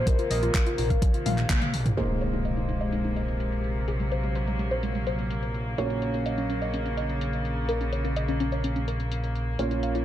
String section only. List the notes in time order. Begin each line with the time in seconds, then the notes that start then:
Already playing: C3 A#3
0.07 D#3
1.97 C3 G#3 A#3
3.88 F#3
5.78 C#3 F#3
9.59 C#3